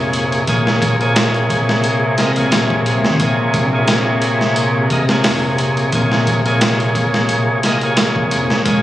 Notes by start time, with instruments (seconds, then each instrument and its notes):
Already playing: upright bass F1, tonewheel organ A#2 A#3 G#4 C#5, string section C3
0.13 closed hi-hat
0.32 closed hi-hat
0.47 upright bass A#1, tonewheel organ A#2 A#3 G#4 C#5, kick, closed hi-hat
0.67 snare
0.82 upright bass A#1, kick, closed hi-hat
1.00 tonewheel organ A#2 A#3 G#4 C#5, closed hi-hat
1.16 snare, closed hi-hat
1.34 closed hi-hat
1.50 kick, closed hi-hat
1.69 snare
1.84 closed hi-hat
2.18 tonewheel organ A#2 A#3 G#4 D#5, snare, closed hi-hat
2.36 upright bass C#2, tonewheel organ A#2 A#3 G#4 C#5, closed hi-hat
2.51 upright bass A#1, snare, closed hi-hat
2.70 kick
2.86 closed hi-hat
3.04 upright bass D#2, snare
3.20 upright bass A#1, tonewheel organ A#2 A#3 G#4 C#5, kick, closed hi-hat
3.54 upright bass A#1, kick, closed hi-hat
3.72 tonewheel organ A#2 A#3 G#4 C#5
3.88 snare, closed hi-hat
4.22 closed hi-hat
4.41 snare
4.56 closed hi-hat
4.90 tonewheel organ A#2 A#3 G#4 D#5, kick, closed hi-hat
5.09 tonewheel organ A#2 A#3 G#4 C#5, snare
5.24 upright bass F1, snare, open hi-hat
5.58 closed hi-hat
5.77 closed hi-hat
5.92 upright bass A#1, tonewheel organ A#2 A#3 G#4 C#5, kick, closed hi-hat
6.12 snare
6.27 upright bass A#1, kick, closed hi-hat
6.45 tonewheel organ A#2 A#3 G#4 C#5, closed hi-hat
6.61 snare, closed hi-hat
6.80 closed hi-hat
6.95 kick, closed hi-hat
7.14 snare
7.29 upright bass A#1, closed hi-hat
7.63 tonewheel organ A#2 A#3 G#4 D#5, snare, closed hi-hat
7.81 tonewheel organ A#2 A#3 G#4, closed hi-hat
7.85 tonewheel organ C#5
7.97 snare, closed hi-hat
8.16 kick
8.31 upright bass F1, closed hi-hat
8.50 snare
8.65 upright bass A#1, tonewheel organ A#2 A#3 G#4 C#5, string section G#3, kick, closed hi-hat